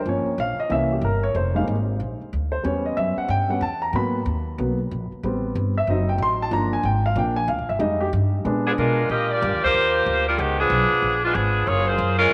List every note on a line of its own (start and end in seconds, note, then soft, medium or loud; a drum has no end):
0.06 0.25 G1 medium
0.06 0.30 F3 medium
0.06 0.31 A#3 soft
0.06 0.31 C#4 medium
0.06 0.38 C#5 medium
0.26 muted upright bass stroke soft
0.38 0.57 A#1 medium
0.38 0.59 F5 medium
0.58 0.71 D#5 medium
0.58 muted upright bass stroke soft
0.69 1.01 C2 medium
0.69 0.94 E3 soft
0.69 0.94 A#3 soft
0.69 0.95 C#4 medium
0.69 0.91 E5 medium
0.92 1.03 G4 medium
1.01 1.33 G1 medium
1.01 1.24 A#4 medium
1.23 1.35 C#5 medium
1.35 1.66 F1 medium
1.35 1.56 C5 medium
1.55 1.74 G3 medium
1.55 1.74 G#3 soft
1.55 1.75 A#3 soft
1.55 1.75 D#4 medium
1.55 1.63 F5 medium
1.68 1.99 G#1 medium
2.00 2.19 A#1 medium
2.21 muted upright bass stroke soft
2.33 2.64 D2 medium
2.52 2.64 C5 medium
2.63 2.96 E2 medium
2.63 3.48 G3 soft
2.63 3.48 B3 soft
2.63 3.49 C#4 medium
2.63 2.85 C#5 medium
2.86 2.97 D#5 medium
2.97 3.16 F#2 medium
2.97 3.17 E5 medium
3.16 3.29 F#5 medium
3.16 muted upright bass stroke soft
3.28 3.60 G2 medium
3.28 3.49 G5 loud
3.49 3.60 G3 soft
3.49 3.60 B3 soft
3.49 3.61 C#4 soft
3.49 3.61 F#5 medium
3.61 3.92 E2 medium
3.61 3.82 A5 medium
3.82 3.93 A#5 medium
3.93 4.24 G#2 medium
3.93 4.17 F#3 medium
3.93 4.18 A#3 soft
3.93 4.18 B3 medium
3.93 4.25 B5 medium
4.26 4.57 D#2 medium
4.58 4.89 B1 medium
4.58 4.77 F#3 soft
4.58 4.77 A#3 soft
4.58 4.77 B3 medium
4.91 5.10 A#1 medium
5.12 muted upright bass stroke soft
5.23 5.54 A1 medium
5.23 5.73 G3 medium
5.23 5.74 B3 soft
5.23 5.74 C4 medium
5.55 5.86 G1 loud
5.78 5.88 E5 medium
5.87 6.18 F#1 medium
5.87 6.49 F#3 medium
5.87 6.49 C4 medium
5.87 6.50 D#4 medium
5.87 6.09 D#5 medium
6.09 6.20 G5 medium
6.18 6.50 A1 loud
6.23 6.41 C6 medium
6.42 6.53 A5 medium
6.51 6.83 G1 medium
6.51 6.75 F3 medium
6.51 6.76 A#3 soft
6.51 6.76 D4 medium
6.51 6.72 A#5 medium
6.73 6.84 G#5 medium
6.83 7.15 G#1 medium
6.83 7.04 G5 medium
7.06 7.16 F5 medium
7.16 7.47 A#1 loud
7.16 7.34 F3 soft
7.16 7.35 A#3 soft
7.16 7.35 D4 medium
7.16 7.37 G5 medium
7.36 7.48 G#5 medium
7.48 7.60 D2 loud
7.48 7.68 F5 medium
7.58 7.69 A#1 medium
7.69 7.79 G1 medium
7.69 7.80 E5 medium
7.79 8.11 F2 loud
7.79 8.04 G3 medium
7.79 8.04 G#3 medium
7.79 8.04 D#4 medium
7.79 8.01 D#5 medium
8.00 8.08 G4 medium
8.13 8.44 G2 loud
8.45 8.76 A#2 medium
8.45 8.95 G#3 medium
8.45 8.95 B3 soft
8.45 8.96 D4 medium
8.66 8.72 F3 medium
8.66 8.71 B3 medium
8.66 8.71 D4 medium
8.66 8.72 G#4 medium
8.78 9.09 B2 medium
8.78 9.08 G#3 medium
8.78 9.08 D4 medium
8.78 9.08 F4 medium
8.78 9.08 A#4 medium
9.09 9.41 A#2 medium
9.09 9.29 A#3 medium
9.09 9.29 F4 medium
9.09 9.29 G4 medium
9.09 9.29 D#5 medium
9.32 9.63 A#3 medium
9.32 9.63 F4 medium
9.32 9.63 G4 medium
9.32 9.63 D5 loud
9.42 9.52 G2 loud
9.52 9.63 D#2 medium
9.64 9.74 D2 medium
9.64 10.24 A#3 medium
9.64 10.24 F4 medium
9.64 10.24 G4 medium
9.64 10.24 C5 loud
9.74 10.05 D#2 medium
10.06 10.37 D2 medium
10.28 10.38 G3 medium
10.28 10.38 D4 medium
10.28 10.38 F4 medium
10.28 10.38 A#4 medium
10.38 10.69 C#2 loud
10.38 10.59 D#3 medium
10.38 10.59 G#3 medium
10.38 10.59 B3 medium
10.38 10.59 G4 medium
10.59 11.20 F3 medium
10.59 11.20 B3 medium
10.59 11.20 D4 medium
10.59 11.20 G#4 loud
10.70 10.89 B1 loud
10.91 muted upright bass stroke soft
11.02 11.34 A#1 medium
11.24 11.35 G#3 medium
11.24 11.33 B3 medium
11.24 11.33 D4 medium
11.24 11.35 F4 medium
11.34 11.66 G#1 loud
11.34 11.67 F3 medium
11.34 11.67 B3 medium
11.34 11.67 D4 medium
11.34 11.66 G#4 medium
11.67 11.98 F#1 medium
11.67 11.86 A#3 medium
11.67 11.86 F4 medium
11.67 11.86 G#4 medium
11.67 11.88 C#5 medium
11.87 12.20 A#3 medium
11.87 12.17 F4 medium
11.87 12.20 G#4 medium
11.87 12.20 C5 loud
11.98 12.30 F#2 loud
12.18 12.33 G#3 medium
12.18 12.33 C#4 medium
12.18 12.33 F4 medium
12.18 12.33 A#4 loud